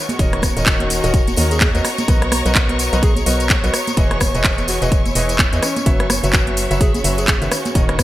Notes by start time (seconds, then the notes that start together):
Already playing: C#4 F#4 C#5 C#6
0.05 D#5, high conga
0.09 closed hi-hat, tambourine
0.19 D#1 D#3 F#4 A#4 C#5 D#5, kick, closed hi-hat, tambourine
0.33 A#5, cross-stick, closed hi-hat
0.42 kick, cross-stick, open hi-hat, tambourine, high conga
0.57 D#1 D#3 F#4 A#4 C#5 D#5, closed hi-hat, tambourine
0.66 kick, clap, closed hi-hat, tambourine
0.80 closed hi-hat, high conga
0.90 open hi-hat, tambourine
1.03 D#1 D#3 F#4 A#4 C#5 D#5, closed hi-hat, tambourine
1.14 kick, closed hi-hat, tambourine
1.28 closed hi-hat, tambourine, high conga
1.36 D#2 D#3 F#4 A#4 C#5 D#5, open hi-hat, tambourine
1.51 G#4, closed hi-hat, tambourine
1.61 G#4, kick, clap, closed hi-hat, tambourine, high conga
1.75 D#2 B3 F#4 A#4 C#5 D#5, closed hi-hat, tambourine
1.85 B3, cross-stick, open hi-hat, tambourine
1.97 closed hi-hat, tambourine, high conga
2.08 B1 B3 F#4 A#4 B4 D#5, kick, closed hi-hat, tambourine
2.22 cross-stick, closed hi-hat
2.32 cross-stick, open hi-hat, tambourine, high conga
2.46 B1 B3 F#4 A#4 B4 D#5, closed hi-hat, tambourine
2.55 kick, clap, closed hi-hat, tambourine
2.69 closed hi-hat, high conga
2.79 open hi-hat, tambourine
2.93 B1 B3 F#4 A#4 B4 D#5, closed hi-hat, tambourine
3.03 G#4, kick, closed hi-hat, tambourine
3.16 G#4, closed hi-hat, tambourine, high conga
3.26 B1 B3 F#4 A#4 B4 D#5, open hi-hat, tambourine
3.40 closed hi-hat, tambourine
3.50 kick, clap, closed hi-hat, tambourine, high conga
3.64 B1 B3 F#4 A#4 B4 D#5, closed hi-hat, tambourine
3.74 cross-stick, open hi-hat, tambourine
3.87 closed hi-hat, tambourine, high conga
3.96 E1 E3 E4 G#4 B4 D#5, kick, closed hi-hat, tambourine
4.11 G#5, cross-stick, closed hi-hat
4.17 E4, kick, cross-stick, open hi-hat, tambourine, high conga
4.35 E1 E3 E4 G#4 B4 D#5, closed hi-hat, tambourine
4.44 kick, clap, closed hi-hat, tambourine
4.58 closed hi-hat, tambourine, high conga
4.68 F#4, open hi-hat, tambourine
4.82 E1 E3 E4 F#4 G#4 B4 D#5, closed hi-hat, tambourine
4.92 kick, closed hi-hat, tambourine
5.06 closed hi-hat, tambourine, high conga
5.15 E1 E3 E4 G#4 B4 D#5, open hi-hat, tambourine
5.29 closed hi-hat, tambourine
5.39 kick, clap, closed hi-hat, tambourine, high conga
5.53 E2 E3 E4 G#4 B4 D#5, closed hi-hat, tambourine
5.62 C#4, cross-stick, open hi-hat, tambourine
5.76 closed hi-hat, tambourine, high conga
5.86 F#1 F#3 C#4 F#4 B4 C#5 E5, kick, closed hi-hat, tambourine
6.00 F#4, cross-stick, closed hi-hat
6.06 E5, cross-stick, open hi-hat, tambourine
6.10 tambourine, high conga
6.24 F#1 F#3 F#4 B4 C#5 E5, closed hi-hat, tambourine
6.33 kick, clap, closed hi-hat, tambourine
6.45 B5, closed hi-hat, high conga
6.57 open hi-hat, tambourine
6.71 F#1 F#3 F#4 B4 C#5 E5, closed hi-hat, tambourine
6.80 G#4, kick, closed hi-hat, tambourine
6.94 G#4, closed hi-hat, tambourine, high conga
7.04 F#1 F#3 F#4 B4 C#5 E5, open hi-hat, tambourine
7.18 G#4, closed hi-hat, tambourine
7.28 G#4, kick, clap, closed hi-hat, tambourine, high conga
7.42 F#1 D#3 F#4 B4 C#5 E5, closed hi-hat, tambourine
7.51 cross-stick, open hi-hat, tambourine
7.65 closed hi-hat, tambourine, high conga
7.74 D#1 D#3 F#4 A#4 C#5 D#5, kick, closed hi-hat, tambourine
7.89 cross-stick, closed hi-hat
7.93 D#5
7.99 kick, cross-stick, open hi-hat, tambourine, high conga